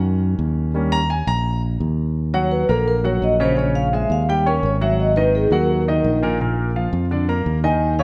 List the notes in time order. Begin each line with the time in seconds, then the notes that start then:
Already playing: F#2 D#3 A#3 C#4
0.39 D#2
0.74 G3 A#3 C#4
0.92 A#5
1.10 G#5
1.27 A#1 A#5
1.80 D#2
2.34 F#3 F#4 C#5 F#5
2.51 B4
2.69 A#1 A#3 A4 A#4 A#5
2.88 A#4
3.04 F#3 F#4 C#5 F#5
3.22 A#1 D#5
3.40 C#3 C#4 C5 C#5
3.57 C#3 C#4 C#5
3.75 F5
3.93 G#3 G#4 E5 G#5
4.10 D#2 F5
4.29 G3 G4 G5
4.46 C#4 A#4 C#5 C#6
4.63 G#1 C#5
4.81 F#3 F#4 E5 F#5
5.00 D#5
5.16 D#3 D#4 B4 D#5
5.35 G#4
5.51 D#2 F#3 F#4 A#4 F#5
5.88 D#3 D#4 D#5
6.04 A#1
6.22 A#2 A#3 A#4
6.41 A#2 A#3 A#4
6.76 F3 F4 F5
6.93 F2
7.11 D3 D4 D5
7.29 A#3 A#4 A#5
7.46 D#2
7.64 D#3 D#4 D#5 G#5
7.99 C#3 C#4 C#5 F5